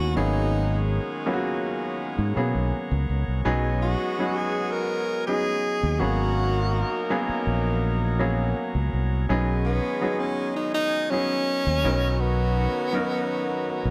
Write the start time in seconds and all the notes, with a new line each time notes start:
Already playing: D#3 G#3 B3 C#4 E4 F#4 G#4 C#5 D#5 G#5 C#6
0.00 D#2
0.15 G#1 D#3 F#3 G#3 A#3 B3 C#4 D#4 G#4 F#5 A#5
1.26 F#3 A#3 B3 C#4 F4
1.33 F#4
2.18 G#2
2.36 B2 F#3 A#3 B3 C#4 G#4
2.55 B1
2.91 C#2
3.09 C#2
3.28 C2
3.45 B1 F#3 G#3 B3 C#4 D#4 F#4 G#4 D#5 G#5
3.82 F#4
4.19 F#3 B3 C#4 D#4 G#4
4.37 G#4
4.71 A#4
5.27 F#3 B3 C#4 D#4 G#4
5.83 D#2
5.99 G#1 F#3 A#3 B3 C#4 D#4 F#4 G#4 A#4 F#5 A#5
7.10 F#3 A#3 B3 C#4 G#4
7.29 muted fingered electric bass stroke
7.47 A#1
8.19 F#3 A#3 B3 C#4 G#4
8.75 C#2
8.93 C2
9.29 B1 D#3 F#3 G#3 B3 C#4 D#4 G#4 D#5 G#5
9.66 B3
10.01 F#3 B3 C#4 D#4 G#4
10.19 C#4
10.56 D#4
10.74 D#4
11.11 F#3 B3 C#4 D#4 G#4
11.67 D#2
11.84 B1 D#3 F#3 B3 C#4 D#4 F#4 A#4 A#5 C#6
12.20 B3
12.93 F#3 B3 C#4 D#4 A#4
13.85 B1